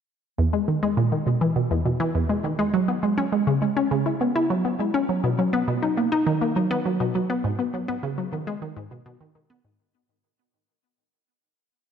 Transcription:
0.38 E2
0.53 G#3
0.68 D#3
0.83 G#3
0.97 A#2
1.12 D#3
1.27 B2
1.41 E3
1.56 B2
1.71 E2
1.85 B2
2.00 E3
2.15 E2
2.29 G#3
2.44 D#3
2.59 G#3
2.74 F#3
2.88 B3
3.03 G#3
3.18 C#4
3.32 G#3
3.47 C#3
3.62 G#3
3.77 C#4
3.91 C#3
4.06 E4
4.21 B3
4.36 E4
4.50 F#3
4.65 B3
4.79 G#3
4.94 C#4
5.09 F#3
5.24 B2
5.39 F#3
5.53 B3
5.68 B2
5.83 D#4
5.97 A#3
6.12 D#4
6.27 D#3
6.41 A#3
6.56 F#3
6.71 B3
6.86 F#3
7.00 B2
7.15 F#3
7.30 B3
7.44 G#2
7.59 B3
7.74 F#3
7.88 B3
8.03 C#3
8.18 F#3
8.32 D#3
8.47 G#3
8.62 D#3
8.77 G#2
8.91 B2
9.06 B2
9.21 D#3
9.35 D#3
9.50 B3
9.65 G#2

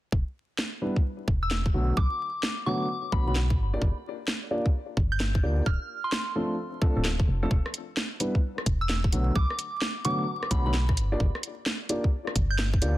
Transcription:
0.12 E1, kick
0.59 snare
0.82 G3 B3 D4 E4 B4
0.96 kick
1.28 E1, kick
1.43 E6
1.51 snare
1.66 kick
1.74 B1 D3 F#3 A3 B3 F#4
1.97 B1 D6, kick
2.43 snare
2.66 D3 F#3 A3 B3 F#4 D6
3.12 B1 D3 F#3 A3 B3 F#4 B5, kick
3.27 D3 F#3 A3 B3 F#4 B5
3.35 snare
3.50 kick
3.58 G1
3.74 A#3 D4 F4 G4 D5
3.82 G1, kick
4.28 snare
4.51 A#3 D4 F4 G4 D5
4.66 kick
4.97 G1, kick
5.12 G6
5.20 snare
5.35 kick
5.43 D2 A#3 D4 F4 G4 D5
5.66 D1 F6, kick
6.04 C6
6.12 snare
6.36 F3 A3 C4 D4 A4
6.82 F3 A3 C4 D4 A4, kick
6.97 D1 F3 A3 C4 D4 A4
7.05 snare
7.20 kick
7.28 F1
7.43 F3 A3 C4 D4 A4
7.51 E1, kick
7.66 cross-stick
7.74 closed hi-hat
7.97 snare
8.20 G3 B3 D4 E4 B4, closed hi-hat
8.35 kick
8.58 cross-stick
8.66 E1, kick, closed hi-hat
8.81 E6
8.89 snare
9.04 kick
9.12 B1 D3 F#3 A3 B3 F#4, closed hi-hat
9.36 B1 D6, kick
9.50 cross-stick
9.59 closed hi-hat
9.82 snare
10.05 D3 F#3 A3 B3 F#4 D6, closed hi-hat
10.43 cross-stick
10.51 B1 D3 F#3 A3 B3 F#4 B5, kick, closed hi-hat
10.66 D3 F#3 A3 B3 F#4 B5
10.74 snare
10.89 kick, cross-stick
10.97 G1, closed hi-hat
11.12 A#3 D4 F4 G4 D5
11.20 G1, kick
11.35 cross-stick
11.43 closed hi-hat
11.66 snare
11.89 A#3 D4 F4 G4 D5, closed hi-hat
12.04 kick
12.27 cross-stick
12.36 G1, kick, closed hi-hat
12.50 G6
12.59 snare
12.73 kick
12.82 D2 A#3 D4 F4 G4 D5, closed hi-hat

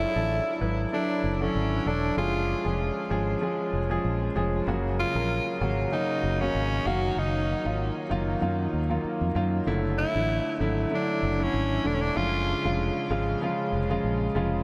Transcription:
Already playing: F#3 D4 E4 A4
0.00 E4
0.15 A1 F#3 D4 E4 A4
0.60 G#1 F#3 D4 E4 B4
0.92 F#3 D4 E4 A4
1.23 F#1
1.33 D4
1.40 D3 F#3 C#4 E4 A4
1.55 G#1
1.86 E1 F#3 D4 E4 A4
2.16 F#1 F3 G#3 C#4 F4 G#4
2.64 F1 F3 G#3 C#4 G#4
3.10 G#1 F3 G#3 C#4 G#4
3.41 F3 G#3 C#4 G#4
3.73 F1
3.90 F3 G#3 C#4 G#4
4.04 A#1
4.35 F1 F3 G#3 C#4 G#4
4.67 F#1 C#3 F#3 A#3 F#4
5.00 F4
5.15 A#1 C#3 F#3 A#3 A#4
5.60 G#1 C#3 F#3 A#3 F#4
5.91 C#3 F#3 A#3 D#4 F#4
6.23 F#1
6.40 C#3 F#3 A#3 C#4 F#4
6.54 G#1
6.86 F#1 D#3 F#3 A#3 F#4 F5
7.16 F#1 D#4
7.65 G#1 D#3 F#3 A#3 F4
8.09 F#1 D#3 F#3 A#3 F4
8.41 F#2 D#3 F#3 A#3 F4
8.73 D#2
8.89 D#3 F#3 A#3 F4
9.04 muted fretless electric bass stroke
9.21 F2
9.35 F#2 D#3 F#3 A#3 F4
9.66 F#1 D3 F#3 A3 E4
9.98 E4
10.15 A1 D3 F#3 A3 E4
10.60 G#1 D3 F#3 A3 E4
10.90 D3 F#3 A3 E4
10.95 D4
11.22 F#1
11.39 D3 F#3 A3 C#4 E4
11.53 G#1
11.84 E1 D3 F#3 A3 D4 E4
11.94 C#4
12.01 D4
12.15 F#1 C#3 F3 G#3 F4
12.64 F1 C#3 F3 G#3 F4
13.10 G#1 C#3 F3 G#3 F4
13.41 C#3 F3 G#3 F4
13.72 F1
13.90 C#3 F3 G#3 F4
14.04 A#1
14.35 F1 C#3 F3 G#3 F4

